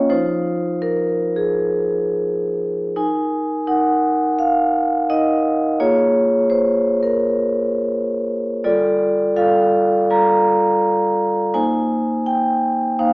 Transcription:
0.00 0.13 A#3 medium
0.00 0.13 C#4 medium
0.00 0.10 F4 medium
0.00 0.13 C#5 loud
0.00 0.12 D#5 loud
0.10 2.93 F3 medium
0.10 2.93 D#4 medium
0.10 2.93 F4 medium
0.10 0.82 C5 loud
0.82 1.36 A#4 loud
1.36 2.62 G#4 medium
2.96 3.65 D#4 medium
2.96 3.65 A#4 medium
2.96 3.68 G#5 loud
3.67 5.06 D#4 medium
3.67 5.05 A#4 medium
3.67 4.39 F#5 medium
4.39 5.10 F5 loud
5.10 5.78 D#4 medium
5.10 5.78 A#4 medium
5.10 5.80 D#5 loud
5.80 8.61 A#3 medium
5.80 8.61 F4 medium
5.80 8.61 G#4 medium
5.80 6.50 C#5 loud
6.50 7.03 C5 loud
7.03 8.29 A#4 medium
8.64 9.34 G3 medium
8.64 9.35 F4 medium
8.64 9.34 A4 medium
8.64 9.37 D5 loud
9.36 10.09 G3 medium
9.36 10.08 F4 medium
9.36 10.09 A4 medium
9.36 10.11 F5 loud
10.10 11.51 G3 medium
10.10 11.51 F4 medium
10.10 11.51 A4 medium
10.10 11.55 A#5 loud
11.54 12.95 A#3 medium
11.54 12.95 D#4 medium
11.54 12.95 C5 medium
11.54 12.27 G#5 loud
12.26 12.99 G5 loud
12.99 13.13 A#3 medium
12.99 13.13 D#4 medium
12.99 13.13 C5 medium
12.99 13.13 F5 loud

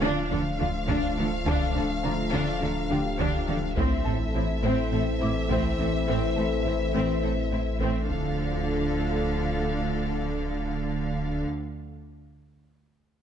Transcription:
0.00 3.80 D1 medium
0.00 0.10 D2 medium
0.00 0.10 D3 medium
0.00 0.20 D3 medium
0.00 3.73 F3 medium
0.00 3.73 A3 medium
0.00 3.74 A3 medium
0.00 3.78 D4 medium
0.00 0.29 D4 medium
0.00 0.30 D4 medium
0.00 1.42 F4 soft
0.00 3.77 F4 medium
0.00 1.43 F5 medium
0.00 3.73 F5 medium
0.00 0.27 A5 medium
0.30 0.39 D2 medium
0.30 0.40 D3 soft
0.30 0.49 F3 medium
0.30 0.38 D4 medium
0.30 0.41 A4 soft
0.59 0.68 D2 medium
0.59 0.68 D3 soft
0.59 0.77 F3 medium
0.59 0.67 D4 medium
0.59 0.69 F4 soft
0.88 0.96 D2 medium
0.88 0.96 D3 medium
0.88 1.06 D3 medium
0.88 1.15 D4 medium
0.88 1.16 D4 medium
0.88 taiko medium
1.17 1.25 D2 medium
1.17 1.26 D3 soft
1.17 1.35 F3 medium
1.17 1.26 D4 medium
1.17 1.28 A4 medium
1.46 1.54 D2 medium
1.46 1.64 D3 medium
1.46 1.55 D3 medium
1.46 1.73 D4 medium
1.46 1.74 D4 medium
1.46 3.15 A5 medium
1.46 taiko loud
1.75 1.83 D2 medium
1.75 1.84 D3 medium
1.75 1.92 D4 medium
1.75 1.83 D4 soft
1.75 1.84 A4 medium
2.03 2.12 D2 soft
2.03 2.13 D3 medium
2.03 2.21 A3 medium
2.03 2.11 D4 soft
2.03 2.13 F4 medium
2.03 3.73 A#5 medium
2.32 2.41 D2 medium
2.32 2.50 D3 medium
2.32 2.41 D3 medium
2.32 2.59 D4 medium
2.32 2.60 D4 medium
2.61 2.69 D2 soft
2.61 2.70 D3 soft
2.61 2.79 F3 medium
2.61 2.69 D4 soft
2.61 2.70 A4 soft
2.90 2.98 D2 medium
2.90 2.98 D3 soft
2.90 3.08 F3 medium
2.90 2.98 D4 medium
2.90 2.99 F4 soft
2.90 4.60 G4 soft
2.90 4.60 G5 soft
3.19 3.27 D2 medium
3.19 3.28 D3 medium
3.19 3.37 D3 medium
3.19 3.46 D4 medium
3.19 3.47 D4 medium
3.19 taiko medium
3.47 3.56 D2 soft
3.47 3.56 D3 medium
3.47 3.66 F3 medium
3.47 3.57 D4 soft
3.47 3.55 A4 medium
3.77 3.85 A1 medium
3.77 8.09 A1 medium
3.77 3.85 A2 medium
3.77 7.93 E3 medium
3.77 8.06 A3 medium
3.77 3.94 A3 medium
3.77 4.04 C4 medium
3.77 8.10 C4 medium
3.77 4.04 C4 medium
3.77 8.10 E4 medium
3.77 8.05 A4 medium
3.77 7.93 C5 medium
3.77 8.10 E5 medium
3.77 taiko medium
4.04 4.14 A1 medium
4.04 4.14 A2 soft
4.04 4.14 C4 soft
4.04 4.14 A4 soft
4.04 4.23 A4 soft
4.04 5.74 A5 medium
4.35 4.43 A1 soft
4.35 4.43 A2 medium
4.35 4.43 C4 soft
4.35 4.52 E4 medium
4.35 4.43 E4 soft
4.63 4.72 A1 medium
4.63 4.72 A2 medium
4.63 4.81 A3 medium
4.63 4.90 C4 medium
4.63 4.91 C4 medium
4.92 5.00 A1 soft
4.92 5.01 A2 soft
4.92 5.00 C4 soft
4.92 5.10 C4 medium
4.92 5.02 A4 soft
5.20 5.28 A1 soft
5.20 5.30 A2 soft
5.20 5.38 C4 medium
5.20 5.29 C4 soft
5.20 5.29 E4 soft
5.20 6.90 D6 medium
5.50 5.58 A1 medium
5.50 5.59 A2 medium
5.50 5.67 A3 medium
5.50 5.77 C4 medium
5.50 taiko medium
5.78 5.86 A1 soft
5.78 5.89 A2 soft
5.78 5.86 C4 soft
5.78 5.96 C4 soft
5.78 5.88 A4 medium
6.07 6.15 A1 medium
6.07 6.17 A2 medium
6.07 6.25 A3 medium
6.07 6.34 C4 medium
6.07 6.35 C4 medium
6.36 6.44 A1 soft
6.36 6.45 A2 soft
6.36 6.45 C4 soft
6.36 6.54 A4 soft
6.36 6.46 A4 soft
6.65 6.73 A1 soft
6.65 6.74 A2 soft
6.65 6.74 C4 soft
6.65 6.73 E4 soft
6.65 6.83 E4 soft
6.94 7.02 A1 medium
6.94 7.02 A2 medium
6.94 7.11 A3 medium
6.94 7.21 C4 medium
7.22 7.31 A1 soft
7.22 7.31 A2 soft
7.22 7.30 C4 soft
7.22 7.41 C4 medium
7.22 7.31 A4 soft
7.51 7.59 A1 soft
7.51 7.60 A2 soft
7.51 7.69 C4 soft
7.51 7.60 C4 soft
7.51 7.60 E4 soft
7.80 7.89 A1 soft
7.80 7.89 A2 medium
7.80 7.98 A3 medium
7.80 8.07 C4 medium
8.08 11.45 D1 medium
8.08 11.45 D2 medium
8.08 11.46 D3 soft
8.08 11.46 F3 soft
8.08 11.45 A3 medium
8.08 11.45 D4 soft
8.08 11.45 D4 medium
8.08 11.45 F4 medium
8.08 11.44 A4 soft
8.08 11.45 A4 medium
8.08 11.46 A4 medium
8.08 11.44 F5 soft
8.08 taiko soft

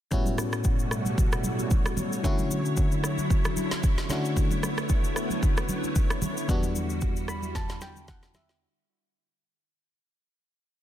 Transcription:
0.11 2.20 A2 medium
0.11 2.22 B2 medium
0.11 2.22 G3 medium
0.11 2.20 G3 medium
0.11 2.22 A3 medium
0.11 2.20 B3 medium
0.11 2.20 C#4 medium
0.11 2.21 E4 medium
0.11 2.22 F#4 medium
0.11 2.21 F#4 medium
0.11 6.45 C#5 medium
0.11 kick loud
0.11 low conga medium
0.11 shaker medium
0.26 high conga medium
0.26 shaker medium
0.38 cross-stick medium
0.38 high conga medium
0.38 shaker loud
0.53 cross-stick medium
0.53 shaker soft
0.64 kick medium
0.64 shaker medium
0.79 shaker soft
0.91 cross-stick medium
0.91 shaker medium
1.05 high conga medium
1.05 shaker medium
1.18 kick loud
1.18 low conga medium
1.18 shaker medium
1.32 cross-stick loud
1.32 shaker soft
1.44 high conga medium
1.44 shaker medium
1.59 high conga soft
1.59 shaker soft
1.71 kick medium
1.71 low conga medium
1.71 shaker medium
1.86 cross-stick loud
1.86 shaker soft
1.97 high conga medium
1.97 low conga medium
1.97 shaker loud
2.13 shaker medium
2.23 4.06 D3 medium
2.23 8.57 D3 medium
2.23 4.08 F#3 medium
2.23 4.06 A3 medium
2.23 4.07 C#4 medium
2.23 8.57 E4 medium
2.23 4.07 E4 medium
2.23 4.07 F#4 medium
2.23 kick loud
2.23 low conga medium
2.23 shaker medium
2.38 high conga medium
2.38 shaker medium
2.51 high conga medium
2.51 shaker loud
2.65 shaker soft
2.77 kick medium
2.77 shaker medium
2.92 shaker soft
3.04 cross-stick medium
3.04 shaker loud
3.18 high conga medium
3.18 shaker soft
3.30 kick loud
3.30 low conga medium
3.30 shaker medium
3.45 cross-stick loud
3.45 shaker medium
3.57 high conga medium
3.57 shaker medium
3.71 snare medium
3.71 high conga soft
3.71 shaker medium
3.83 kick loud
3.83 low conga medium
3.83 shaker medium
3.98 snare medium
3.98 shaker soft
4.09 6.18 D3 medium
4.09 6.18 A3 medium
4.09 6.47 A3 medium
4.09 6.47 B3 medium
4.09 6.18 C#4 medium
4.09 6.19 D4 medium
4.09 6.19 E4 medium
4.09 6.19 F#4 medium
4.09 snare medium
4.09 high conga medium
4.09 low conga medium
4.09 shaker loud
4.25 shaker medium
4.37 kick loud
4.37 low conga medium
4.37 shaker medium
4.51 high conga medium
4.51 shaker medium
4.63 cross-stick medium
4.63 high conga medium
4.63 shaker loud
4.78 cross-stick medium
4.78 shaker soft
4.89 kick medium
4.89 shaker medium
5.04 shaker soft
5.16 cross-stick medium
5.16 shaker medium
5.30 high conga medium
5.30 shaker medium
5.43 kick loud
5.43 low conga medium
5.43 shaker medium
5.57 cross-stick loud
5.57 shaker medium
5.69 high conga medium
5.69 shaker loud
5.84 high conga soft
5.84 shaker soft
5.96 kick loud
5.96 low conga medium
5.96 shaker medium
6.10 cross-stick loud
6.10 shaker soft
6.22 high conga medium
6.22 low conga medium
6.22 shaker loud
6.37 shaker medium
6.48 8.57 E2 medium
6.48 8.57 G3 medium
6.48 8.59 G3 medium
6.48 8.58 B3 medium
6.48 8.58 D4 medium
6.48 8.59 F#4 medium
6.48 8.58 F#4 medium
6.48 kick loud
6.48 low conga medium
6.48 shaker medium
6.63 high conga medium
6.63 shaker medium
6.75 high conga medium
6.75 shaker loud
6.90 shaker soft
7.01 kick loud
7.01 shaker medium
7.16 shaker soft
7.28 7.54 B5 medium
7.28 cross-stick medium
7.28 shaker medium
7.42 high conga medium
7.42 shaker soft
7.55 7.80 A5 medium
7.55 kick loud
7.55 snare medium
7.55 low conga medium
7.55 shaker medium
7.69 snare medium
7.69 shaker soft
7.81 8.07 G5 medium
7.81 snare medium
7.81 high conga medium
7.81 shaker loud
7.96 high conga medium
7.96 shaker medium
8.08 8.33 F#5 medium
8.08 kick medium
8.08 snare medium
8.08 low conga medium
8.08 shaker medium
8.23 snare medium
8.23 shaker soft
8.34 8.60 E5 medium
8.34 snare loud
8.34 high conga medium
8.34 low conga medium
8.34 shaker loud
8.49 snare medium
8.49 shaker medium

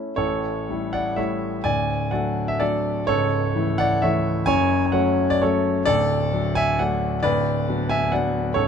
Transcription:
0.00 0.14 A3 soft
0.00 0.14 C#4 soft
0.00 0.14 E4 soft
0.16 1.61 A1 medium
0.16 1.61 A2 medium
0.16 0.90 A4 medium
0.16 0.93 C#5 medium
0.69 1.14 G3 soft
0.69 1.14 A3 soft
0.69 1.15 E4 soft
0.93 1.16 D5 medium
0.93 1.17 F#5 medium
1.16 1.61 G3 soft
1.16 1.61 A3 soft
1.16 1.61 E4 soft
1.16 1.61 C#5 medium
1.16 1.64 E5 medium
1.64 3.03 D1 medium
1.64 3.03 D2 medium
1.64 2.09 D5 medium
1.64 2.12 G#5 loud
2.11 2.57 F#3 soft
2.11 2.57 A3 soft
2.11 2.58 D4 soft
2.11 2.47 D5 medium
2.11 2.49 F#5 medium
2.48 2.61 E5 medium
2.60 3.03 F#3 soft
2.60 3.03 A3 soft
2.60 3.03 D4 soft
2.60 3.04 A4 medium
2.60 3.07 D5 medium
3.07 4.43 C#1 medium
3.07 4.43 C#2 medium
3.07 3.76 A4 medium
3.07 3.79 C#5 loud
3.55 3.99 E3 soft
3.55 3.99 A3 soft
3.55 4.00 E4 medium
3.78 4.01 D5 medium
3.78 4.02 F#5 loud
4.02 4.43 E3 medium
4.02 4.43 A3 soft
4.02 4.43 E4 medium
4.02 4.44 C#5 medium
4.02 4.47 E5 medium
4.46 5.82 F#1 medium
4.46 5.82 F#2 medium
4.46 4.84 C#5 medium
4.46 4.84 G#5 loud
4.86 4.93 G#5 medium
4.92 5.38 F#3 medium
4.92 5.38 A3 soft
4.92 5.38 C#4 medium
4.92 5.28 C#5 medium
4.92 5.29 F#5 medium
5.30 5.42 D5 loud
5.42 5.82 F#3 medium
5.42 5.82 A3 soft
5.42 5.82 C#4 medium
5.42 5.83 A4 medium
5.42 5.86 C#5 medium
5.86 7.19 D1 medium
5.86 7.19 D2 medium
5.86 6.52 A4 medium
5.86 6.56 D5 loud
6.33 6.75 F#3 soft
6.33 6.76 A3 soft
6.33 6.76 D4 medium
6.55 6.78 E5 medium
6.55 6.79 G#5 loud
6.79 7.19 F#3 medium
6.79 7.19 A3 soft
6.79 7.19 D4 medium
6.79 7.20 D5 medium
6.79 7.22 F#5 medium
7.23 8.51 D1 medium
7.23 8.51 D2 medium
7.23 7.86 B4 medium
7.23 7.90 D5 loud
7.68 8.08 F#3 soft
7.68 8.08 B3 soft
7.68 8.09 D4 medium
7.89 8.10 E5 medium
7.89 8.11 G#5 loud
8.12 8.51 F#3 soft
8.12 8.52 B3 soft
8.12 8.52 D4 medium
8.12 8.53 D5 medium
8.12 8.55 F#5 medium
8.54 8.68 C#1 medium
8.54 8.68 C#2 medium
8.54 8.68 A4 medium
8.54 8.68 C#5 medium

